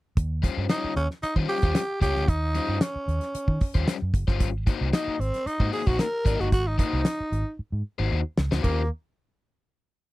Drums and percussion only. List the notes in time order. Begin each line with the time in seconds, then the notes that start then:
0.17 kick, closed hi-hat
0.43 kick, closed hi-hat
0.69 snare, closed hi-hat
0.97 closed hi-hat
1.11 snare
1.23 closed hi-hat
1.36 kick
1.49 open hi-hat
1.62 kick, closed hi-hat
1.75 snare, closed hi-hat
2.02 kick, closed hi-hat
2.16 snare
2.28 kick, closed hi-hat
2.55 closed hi-hat
2.81 snare, closed hi-hat
3.09 closed hi-hat
3.21 snare, closed hi-hat
3.35 closed hi-hat
3.48 kick
3.61 kick, open hi-hat
3.74 kick, closed hi-hat
3.88 snare, closed hi-hat
4.14 kick, closed hi-hat
4.28 kick, snare
4.40 kick, closed hi-hat
4.67 kick, closed hi-hat
4.93 snare, closed hi-hat
5.21 closed hi-hat
5.34 snare, closed hi-hat
5.47 closed hi-hat
5.60 kick
5.73 open hi-hat
5.87 kick
5.99 snare, closed hi-hat
6.26 kick, closed hi-hat
6.40 snare
6.52 kick, closed hi-hat
6.79 kick, closed hi-hat
7.05 snare, closed hi-hat
7.33 closed hi-hat
8.38 snare
8.52 snare
8.64 kick, crash